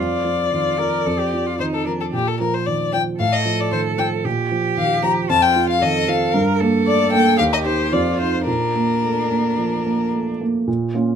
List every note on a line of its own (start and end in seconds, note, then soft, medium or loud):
0.00 1.03 F2 soft
0.00 0.45 F4 soft
0.00 1.57 D5 medium
0.25 0.68 F3 soft
0.51 0.79 D#3 soft
0.51 0.80 F4 soft
0.79 1.06 F3 soft
0.79 1.07 A#4 soft
1.06 2.11 F2 soft
1.06 1.20 A4 soft
1.19 1.48 G4 soft
1.34 1.76 F3 soft
1.46 1.58 F4 soft
1.59 1.87 D#3 soft
1.59 1.87 D#4 soft
1.59 1.65 C5 medium
1.74 1.86 A4 soft
1.85 2.13 F3 soft
1.85 2.13 D4 soft
1.85 1.92 A#4 soft
2.01 2.06 A4 soft
2.13 3.17 A#2 soft
2.13 2.29 G4 medium
2.28 2.40 A4 medium
2.40 2.83 F3 soft
2.40 2.56 A#4 medium
2.54 2.68 C5 medium
2.66 2.94 D#3 soft
2.66 2.93 D5 medium
2.93 3.20 F3 soft
2.93 3.01 G5 medium
3.19 4.22 A2 soft
3.19 4.26 A4 medium
3.19 3.34 F5 medium
3.33 3.62 D#5 medium
3.45 3.88 F3 soft
3.60 3.72 D5 medium
3.72 3.98 D#3 soft
3.72 3.80 C5 medium
3.98 4.25 F3 soft
3.98 4.06 G5 medium
4.25 5.26 A#2 soft
4.25 5.30 G4 medium
4.52 4.93 F3 soft
4.77 5.03 D#3 soft
4.77 5.02 F5 medium
5.03 5.30 F3 soft
5.03 5.11 A#5 medium
5.29 6.31 F2 medium
5.29 5.81 F4 medium
5.29 5.44 A5 medium
5.42 5.69 G5 medium
5.56 5.98 F3 soft
5.70 5.83 F5 medium
5.81 6.08 D#3 soft
5.81 6.35 A4 medium
5.81 6.10 D#5 medium
6.08 6.35 F3 soft
6.08 6.35 F5 medium
6.34 7.36 G2 medium
6.34 6.62 A#4 medium
6.60 7.03 A#3 soft
6.60 7.40 A4 medium
6.87 7.13 A3 soft
6.87 7.11 D5 medium
7.12 7.39 A#3 soft
7.12 7.37 G5 medium
7.38 7.91 D#2 medium
7.38 7.91 G4 medium
7.38 7.43 F5 medium
7.53 7.58 D#5 medium
7.65 7.90 D#4 soft
7.65 7.90 G4 soft
7.65 7.94 C5 medium
7.92 8.45 F2 medium
7.92 8.46 F4 medium
7.92 8.20 D5 medium
8.20 8.44 D#4 soft
8.20 8.45 F4 soft
8.20 8.46 C5 medium
8.47 9.54 A#2 soft
8.47 10.36 D4 soft
8.47 10.09 A#4 medium
8.75 9.19 A#3 soft
9.03 9.30 A3 soft
9.31 9.75 A#3 soft
9.58 10.02 F3 soft
9.86 10.30 A#3 soft
10.13 10.41 A3 soft
10.41 10.68 A#3 soft
10.68 10.93 A#2 soft
10.94 11.15 A#3 soft
10.94 11.15 C#4 soft
10.94 11.15 F4 soft